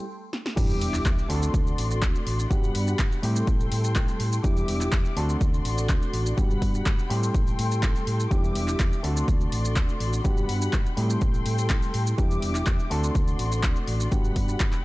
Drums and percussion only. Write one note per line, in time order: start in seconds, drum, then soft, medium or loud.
0.33 snare medium
0.46 snare medium
0.57 kick loud
0.57 crash loud
0.57 shaker medium
0.70 shaker soft
0.81 open hi-hat loud
0.94 clap soft
0.94 shaker medium
1.06 kick loud
1.06 clap loud
1.06 shaker medium
1.19 shaker soft
1.30 open hi-hat loud
1.43 shaker medium
1.54 kick loud
1.54 shaker medium
1.67 shaker soft
1.78 open hi-hat loud
1.91 shaker medium
2.02 kick loud
2.02 clap loud
2.02 shaker medium
2.15 shaker soft
2.27 open hi-hat loud
2.39 shaker medium
2.51 kick loud
2.51 shaker medium
2.64 shaker soft
2.75 open hi-hat loud
2.88 shaker medium
2.99 kick loud
2.99 clap loud
2.99 shaker medium
3.12 shaker soft
3.23 open hi-hat loud
3.36 shaker medium
3.47 kick loud
3.47 shaker medium
3.60 shaker soft
3.72 open hi-hat loud
3.84 shaker medium
3.96 kick loud
3.96 clap loud
3.96 shaker medium
4.08 shaker soft
4.20 open hi-hat loud
4.33 shaker medium
4.44 kick loud
4.44 shaker medium
4.57 shaker soft
4.68 open hi-hat loud
4.81 clap soft
4.81 shaker medium
4.92 kick loud
4.92 clap loud
4.92 shaker medium
5.05 shaker soft
5.17 open hi-hat loud
5.30 shaker medium
5.41 kick loud
5.41 shaker medium
5.54 shaker soft
5.65 open hi-hat loud
5.78 shaker medium
5.89 kick loud
5.89 clap loud
5.89 shaker medium
6.02 shaker soft
6.14 open hi-hat loud
6.26 shaker medium
6.38 kick loud
6.38 shaker medium
6.51 shaker soft
6.62 kick medium
6.62 open hi-hat loud
6.75 shaker medium
6.86 kick loud
6.86 clap loud
6.86 shaker medium
6.99 shaker soft
7.10 open hi-hat loud
7.23 shaker medium
7.34 kick loud
7.34 shaker medium
7.47 shaker soft
7.59 open hi-hat loud
7.72 shaker medium
7.83 kick loud
7.83 clap loud
7.83 shaker medium
7.96 shaker soft
8.07 open hi-hat loud
8.20 shaker medium
8.31 kick loud
8.31 shaker medium
8.44 shaker soft
8.55 open hi-hat loud
8.68 clap soft
8.68 shaker medium
8.80 kick loud
8.80 clap loud
8.80 shaker medium
8.93 shaker soft
9.04 open hi-hat loud
9.17 shaker medium
9.28 kick loud
9.28 shaker medium
9.41 shaker soft
9.52 open hi-hat loud
9.65 shaker medium
9.76 kick loud
9.76 clap loud
9.76 shaker medium
9.89 shaker soft
10.00 open hi-hat loud
10.13 shaker medium
10.25 kick loud
10.25 shaker medium
10.37 shaker soft
10.49 open hi-hat loud
10.62 shaker medium
10.73 kick loud
10.73 clap loud
10.73 shaker medium
10.86 shaker soft
10.97 open hi-hat loud
11.10 shaker medium
11.22 kick loud
11.22 shaker medium
11.34 shaker soft
11.46 open hi-hat loud
11.58 shaker medium
11.70 kick loud
11.70 clap loud
11.70 shaker medium
11.83 shaker soft
11.94 open hi-hat loud
12.07 shaker medium
12.18 kick loud
12.18 shaker medium
12.31 shaker soft
12.42 open hi-hat loud
12.55 clap soft
12.55 shaker medium
12.67 kick loud
12.67 clap loud
12.67 shaker medium
12.80 shaker soft
12.91 open hi-hat loud
13.04 shaker medium
13.15 kick loud
13.15 shaker medium
13.28 shaker soft
13.39 open hi-hat loud
13.52 shaker medium
13.63 kick loud
13.63 clap loud
13.63 shaker medium
13.76 shaker soft
13.88 open hi-hat loud
14.00 shaker medium
14.12 kick loud
14.12 shaker medium
14.25 shaker soft
14.36 kick medium
14.36 open hi-hat loud
14.49 shaker medium
14.60 kick loud
14.60 clap loud
14.60 shaker medium
14.73 clap soft
14.73 shaker soft